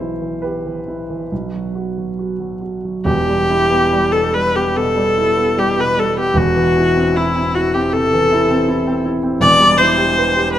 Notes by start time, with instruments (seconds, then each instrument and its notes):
Already playing: grand piano B1 E3 C5
0.00 grand piano E4
0.22 grand piano E3
0.42 grand piano G4 B4
0.66 grand piano E3
0.88 grand piano E4
1.10 grand piano E3
1.32 grand piano B1
1.53 grand piano F#3
1.75 grand piano F#4
1.98 grand piano F#3
2.19 grand piano F#4
2.40 grand piano F#3
2.61 grand piano F#4
2.85 grand piano F#3
3.05 grand piano E1 E2, viola G4
3.29 grand piano G3
3.50 grand piano E4
3.71 grand piano B3
3.92 grand piano G3
4.12 grand piano B2, viola A4
4.34 grand piano G3, viola B4
4.55 grand piano B3, viola G4
4.76 grand piano B2, viola A4
4.96 grand piano G3
5.18 grand piano E4
5.36 grand piano B3
5.57 grand piano G3, viola G4
5.77 grand piano B2, viola B4
5.97 grand piano G3, viola A4
6.17 grand piano B3, viola G4
6.34 grand piano E1 E2, viola F#4
6.56 grand piano E3
6.77 grand piano E4
6.96 grand piano C4
7.14 grand piano E4, viola E4
7.34 grand piano C4
7.55 grand piano E4, viola F#4
7.74 grand piano C4, viola G4
7.93 grand piano C3, viola A4
8.13 grand piano E3
8.32 grand piano E4
8.50 grand piano C4
8.69 grand piano E4
8.87 grand piano C4
9.06 grand piano E4
9.23 grand piano C4
9.40 grand piano E1 E2, viola D5
9.60 grand piano G3
9.78 grand piano E4, viola C5
9.97 grand piano G4
10.18 grand piano B4
10.36 grand piano G4
10.53 viola B4, grand piano B4